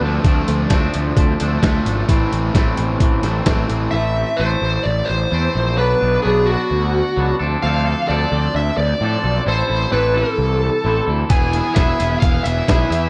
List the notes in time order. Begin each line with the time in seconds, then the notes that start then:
0.01 D2 A3 C4 D4
0.05 F3
0.24 D2 F3 A3 C4, kick, closed hi-hat
0.30 D4
0.48 D2 D4, closed hi-hat
0.52 A3
0.69 D2 F3 A3 C4, kick, snare, closed hi-hat
0.73 F3 D4
0.93 D2 A3 C4, closed hi-hat
1.16 D2 F3 A3, kick, closed hi-hat
1.20 C4
1.40 D2 A3 C4 D4, closed hi-hat
1.62 D2 F3 A3 C4 D4, kick, snare, closed hi-hat
1.86 G#1 A3 D4, closed hi-hat
2.09 A1 E3 A3 C4, kick, closed hi-hat
2.31 A1 A3 C4, closed hi-hat
2.54 A1 E3 A3 C4, kick, snare, closed hi-hat
2.77 A1 C4, closed hi-hat
2.82 A3
3.00 A1 E3 A3, kick, closed hi-hat
3.05 C4
3.23 A1 C4, snare, closed hi-hat
3.28 A3
3.46 A1 E3 A3, kick, snare, closed hi-hat
3.50 C4
3.70 A1 A3 C4, closed hi-hat
3.91 A1 E3 E5
3.96 A3 C4
4.16 A3 C4
4.37 A1 E3 C5
4.42 A3 C4
4.62 A1 A3 C4
4.83 A1 D5
5.05 C5
5.10 A1
5.31 E2 E3 A3 C4
5.53 A#1 C4
5.57 A3
5.76 B1 F#3 B3 D4 B4
6.00 B1 B3 D4
6.22 B1 F#3 B3 G#4
6.26 D4
6.46 D4 F#4
6.50 B3
6.71 D2
7.16 C#2 F#3 B3 D4
7.39 D2 F3 C4 D4 A4
7.62 D2 F3 C4 D4 A4 F5
7.85 C4 D4 A4
8.07 D2 F3 C4 D4 D5
8.11 A4
8.32 D2 C4 D4 A4
8.55 D2 E5
8.77 D2 D5
9.01 A2 F3 C4 D4 A4
9.24 B1 C4 D4 A4
9.46 A1 E3 C4 E4 A4 C5
9.68 A1 C4 E4 A4
9.91 A1 E3 C4 E4 A4 B4
10.14 C4 E4 A4
10.38 C2
10.84 A1 E3 C4 E4 A4
11.07 D2 C4 E4 A4
11.29 E1 E3 B3 E4 G#4 G#5, kick, closed hi-hat
11.53 E4 G#4, closed hi-hat
11.58 B3
11.75 E1 E3 B3 E5, kick, snare, closed hi-hat
11.79 E4 G#4
11.99 E1 E3 B3 E4 G#4, closed hi-hat
12.20 E1 E3 F5, kick, closed hi-hat
12.25 B3 E4 G#4
12.44 E1 E4 G#4 E5, closed hi-hat
12.48 E3 B3
12.68 B1 E3 B3 E4, kick, snare, closed hi-hat
12.72 G#4
12.90 E2 B3 E4 G#4, closed hi-hat